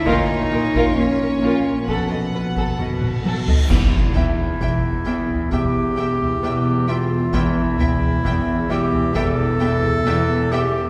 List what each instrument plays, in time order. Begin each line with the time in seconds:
Already playing: harp D4, felt piano A4
0.06 double bass section A#1, synth drone A#1, harp A#2, cello section D#4, violin section F4 C#5, viola section A#4, felt piano C6, taiko, reverse cymbal
0.51 double bass section A#1, harp A#2, viola section A#4, violin section A#4
0.74 double bass section A#1, violin section F4, viola section A#4, taiko
0.97 harp A#3, cello section C#4
1.20 double bass section A#1, viola section A#4, violin section A#4
1.42 double bass section A#1, harp A#2, violin section F4, viola section A#4
1.65 double bass section A#1, viola section A#4, violin section C#5
1.88 double bass section B1, synth drone B1, harp B2, cello section B3, viola section A4, violin section A4 F#5, taiko
2.10 double bass section B1, viola section A4, violin section D#5
2.33 double bass section B1, harp B2, viola section A4, violin section B4
2.56 double bass section B1, viola section A4, violin section A4, taiko
2.79 double bass section B1, harp B2, viola section A4, violin section D#5, taiko low-mid
3.02 taiko mid
3.24 double bass section B1, harp B2, viola section A4, violin section A4, taiko high
3.47 double bass section B1, viola section A4, violin section D#5, taiko low
3.69 double bass section E1, harp E2, cello section E2, synth drone E2, viola section B3, clarinet E4, violin section E5 G5, concert bass drum, taiko, crash, impact
4.15 harp E2, viola section B3, felt piano E5, violin section E5 G5, taiko low
4.38 taiko low
4.61 double bass section E1, harp E2, cello section E2, viola section B3, violin section E5 G5, taiko
5.05 harp E2, viola section B3, violin section E5 G5
5.29 taiko low
5.51 double bass section E1, harp E2, cello section E2, viola section B3, clarinet G4, violin section E5 G5, taiko
5.97 harp E3, viola section B3, violin section E5 G5
6.20 taiko low
6.42 double bass section E1, harp E2, cello section E2, viola section B3, violin section E5 G5
6.88 harp E2, viola section B3, clarinet F4, violin section E5 G5
7.33 double bass section E1, harp E2, cello section E2, synth drone E2, viola section B3, clarinet E4, violin section E5 G5, taiko
7.79 harp E2, viola section B3, violin section E5 G5, taiko low
8.01 taiko low
8.24 double bass section E1, harp E2, cello section E2, viola section B3, violin section E5 G5, taiko
8.70 harp E2, viola section B3, clarinet G4, violin section E5 G5
8.93 taiko low
9.15 double bass section E1, harp E2, cello section E2, viola section B3, clarinet A4, violin section E5 G5, taiko
9.60 harp E3, viola section B3, violin section E5 G5
9.84 taiko low
10.05 double bass section E1, harp E2, cello section E2, viola section B3, violin section E5 G5
10.52 harp E2, viola section B3, clarinet G4, violin section E5 G5